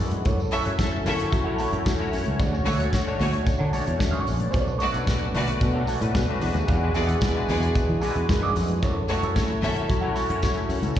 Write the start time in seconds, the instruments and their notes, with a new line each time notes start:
Already playing: french horn section D3 E3 F#4 G#4, tine electric piano G#3 D4 E4 F#4 G#4 B4
0.00 fingered electric bass F#2, muted clean electric guitar stroke, tambourine
0.11 muted clean electric guitar stroke, closed hi-hat, high conga
0.25 fingered electric bass F#2, french horn section F#3 E4 A4, clean electric guitar E4 A4 C#5 F#5, kick, closed hi-hat, tambourine, muted conga
0.40 tambourine
0.51 string section C#4 A4 E5, clean electric guitar E4 A4 C#5 F#5, open hi-hat, tambourine
0.65 fingered electric bass F#2, tine electric piano A3 C#4 E4 F#4 C#5, clean electric guitar E4 A4 C#5 F#5, closed hi-hat
0.79 string section C#4 A4 E5, muted clean electric guitar stroke, kick, snare, closed hi-hat, tambourine, high conga
0.92 muted clean electric guitar stroke
1.06 fingered electric bass F#2, tine electric piano A3 C#4 E4 F#4 C#5, string section C#4 A4 E5, open hi-hat, tambourine, low conga
1.19 muted clean electric guitar stroke, closed hi-hat, tambourine
1.32 fingered electric bass F#3, muted clean electric guitar stroke, kick, closed hi-hat, tambourine
1.44 tine electric piano A3 C#4 E4 F#4 C#5, clean electric guitar E4 A4 C#5 F#5
1.58 clean electric guitar E4 A4 C#5 F#5, open hi-hat, tambourine, muted conga
1.72 fingered electric bass F#2, tine electric piano A3 C#4 E4 F#4 E5, muted clean electric guitar stroke, closed hi-hat
1.85 fingered electric bass F#3, muted clean electric guitar stroke, kick, snare, closed hi-hat, tambourine, high conga
1.98 tine electric piano A3 C#4 E4 F#4 C#5, muted clean electric guitar stroke
2.13 fingered electric bass F#2, open hi-hat, tambourine
2.26 fingered electric bass C#2, muted clean electric guitar stroke, closed hi-hat, high conga
2.39 fingered electric bass D2, french horn section D3 F#4 C#5, clean electric guitar D4 A4 C#5 F#5, kick, closed hi-hat, tambourine, muted conga
2.52 tine electric piano A3 C#4 D4 F#4 C#5, tambourine
2.65 fingered electric bass D2, string section A3 F#4 C#5, clean electric guitar D4 A4 C#5 F#5, open hi-hat, tambourine
2.79 clean electric guitar D4 A4 C#5 F#5, closed hi-hat
2.92 string section A3 F#4 C#5, muted clean electric guitar stroke, kick, snare, closed hi-hat, tambourine, high conga
3.05 tine electric piano A3 C#4 D4 F#4 C#5, muted clean electric guitar stroke
3.20 fingered electric bass D2, string section A3 F#4 C#5, open hi-hat, tambourine, muted conga, low conga
3.33 muted clean electric guitar stroke, closed hi-hat
3.46 muted clean electric guitar stroke, muted fingered electric bass stroke, kick, closed hi-hat, tambourine
3.59 fingered electric bass D3, clean electric guitar D4 A4 C#5 F#5
3.72 tine electric piano A3 C#4 D4 F#4 C#5, clean electric guitar D4 A4 C#5 F#5, open hi-hat, tambourine, muted conga
3.85 fingered electric bass E2, muted clean electric guitar stroke, closed hi-hat
3.98 fingered electric bass F#2, tine electric piano E5 G#5, muted clean electric guitar stroke, kick, snare, closed hi-hat, tambourine, high conga
4.11 clean electric guitar D4 A4 C#5 F#5, tine electric piano D5 F#5, high conga
4.25 fingered electric bass A#1, muted clean electric guitar stroke, open hi-hat, tambourine
4.38 tine electric piano B4 D5, muted clean electric guitar stroke, closed hi-hat, high conga
4.51 fingered electric bass B1, clean electric guitar D4 A4 C#5 F#5, kick, closed hi-hat, tambourine, muted conga
4.55 french horn section A3 B3
4.68 tambourine
4.78 string section A3 F#4 D5, clean electric guitar D4 A4 C#5 F#5, open hi-hat, tambourine
4.92 fingered electric bass B1, tine electric piano A3 C#4 D4 F#4, clean electric guitar D4 A4 C#5 F#5, closed hi-hat, tambourine
4.96 tine electric piano B4
5.05 string section A3 F#4 D5, muted clean electric guitar stroke, kick, snare, closed hi-hat, tambourine, high conga
5.19 muted clean electric guitar stroke
5.34 fingered electric bass B1, tine electric piano A3 C#4 D4 F#4 B4, string section A3 F#4 D5, open hi-hat, tambourine, low conga
5.47 muted clean electric guitar stroke, closed hi-hat, tambourine
5.61 fingered electric bass B2, muted clean electric guitar stroke, kick, closed hi-hat, tambourine
5.73 tine electric piano A3 C#4 D4 F#4 A4, clean electric guitar D4 A4 C#5 F#5
5.87 clean electric guitar D4 A4 C#5 F#5, open hi-hat, tambourine, muted conga
6.00 fingered electric bass A2, tine electric piano A3 C#4 D4 F#4 B4, muted clean electric guitar stroke, closed hi-hat
6.14 fingered electric bass B2, muted clean electric guitar stroke, kick, snare, closed hi-hat, tambourine, high conga
6.28 tine electric piano A3 C#4 D4 F#4 B4, muted clean electric guitar stroke
6.41 fingered electric bass E2, french horn section E3 D4 F#4 G#4, tine electric piano G#3 D4 E4 F#4 B4, open hi-hat, tambourine
6.54 fingered electric bass D#2, muted clean electric guitar stroke, closed hi-hat, tambourine, high conga
6.67 fingered electric bass E2, clean electric guitar E4 G#4 D5 F#5, kick, closed hi-hat, tambourine, muted conga
6.83 tine electric piano G#3 D4 E4 F#4 B4
6.93 fingered electric bass E2, string section B3 G#4 D5, clean electric guitar E4 G#4 D5 F#5, open hi-hat, tambourine
7.07 clean electric guitar E4 G#4 D5 F#5, closed hi-hat, tambourine
7.20 string section B3 G#4 D5, muted clean electric guitar stroke, kick, snare, closed hi-hat, tambourine, high conga
7.34 tine electric piano G#3 D4 E4 F#4 B4, muted clean electric guitar stroke
7.48 fingered electric bass E2, string section B3 G#4 D5, open hi-hat, tambourine, muted conga, low conga
7.61 muted clean electric guitar stroke, closed hi-hat, tambourine
7.75 muted fingered electric bass stroke, kick, closed hi-hat, tambourine
7.88 fingered electric bass E3, muted clean electric guitar stroke
8.01 tine electric piano G#3 D4 E4 F#4 B4, clean electric guitar E4 G#4 D5 F#5, open hi-hat, tambourine, muted conga
8.16 fingered electric bass E2, closed hi-hat
8.29 fingered electric bass F#2, muted clean electric guitar stroke, kick, snare, closed hi-hat, tambourine, high conga
8.42 clean electric guitar E4 G#4 D5 F#5
8.56 fingered electric bass F2, muted clean electric guitar stroke, open hi-hat, tambourine
8.68 muted clean electric guitar stroke, closed hi-hat, high conga
8.81 fingered electric bass F#2, french horn section F#3 E4 A4, clean electric guitar E4 A4 C#5 F#5, kick, closed hi-hat, tambourine, muted conga
9.08 string section A3 F#4 C#5, clean electric guitar E4 A4 C#5 F#5, open hi-hat, tambourine
9.23 fingered electric bass F#2, tine electric piano A3 C#4 E4 F#4 C#5, clean electric guitar E4 A4 C#5 F#5, closed hi-hat
9.35 string section A3 F#4 C#5, muted clean electric guitar stroke, kick, snare, closed hi-hat, tambourine, high conga
9.50 muted clean electric guitar stroke
9.62 fingered electric bass F#2, tine electric piano A3 C#4 E4 F#4 C#5, string section C#4 A4 E5, open hi-hat, tambourine, muted conga, low conga
9.76 muted clean electric guitar stroke, closed hi-hat, tambourine
9.88 fingered electric bass F#3, muted clean electric guitar stroke, kick, closed hi-hat, tambourine
10.01 tine electric piano A3 C#4 E4 F#4 C#5, clean electric guitar E4 A4 C#5 F#5
10.15 clean electric guitar E4 A4 C#5 F#5, open hi-hat, tambourine, muted conga
10.29 fingered electric bass F#2, tine electric piano A3 C#4 E4 F#4 C#5, muted clean electric guitar stroke, closed hi-hat
10.42 fingered electric bass F#3, muted clean electric guitar stroke, kick, snare, closed hi-hat, tambourine, high conga
10.56 tine electric piano C#5 E5, muted clean electric guitar stroke
10.69 fingered electric bass F#2, tine electric piano A4 C#5, open hi-hat, tambourine
10.82 fingered electric bass C#2, tine electric piano F#4 A4, muted clean electric guitar stroke, closed hi-hat, tambourine, high conga
10.95 fingered electric bass D2, clean electric guitar D4, tambourine, muted conga